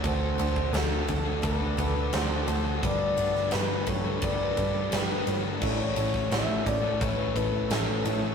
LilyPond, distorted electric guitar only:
\new Staff \with { instrumentName = "Distorted electric guitar" } { \clef bass \time 4/4 \key a \mixolydian \tempo 4 = 86 <d a d'>8 <d a d'>8 <d a d'>16 <a d'>8 <a d'>8 <a d'>16 <d a d'>16 <a d'>16 <d a d'>16 <a d'>16 <d a d'>8 | <g, d g>8 <g, d g>8 <g, d g>16 <d g>8 <d g>8 <d g>16 <g, d g>16 <d g>16 <g, d g>16 <d g>16 <g, d g>8 | <a, e a>8 <a, e a>8 <a, e a>16 <e a>8 <e a>8 <e a>16 <a, e a>16 <e a>16 <a, e a>16 <e a>16 <a, e a>8 | }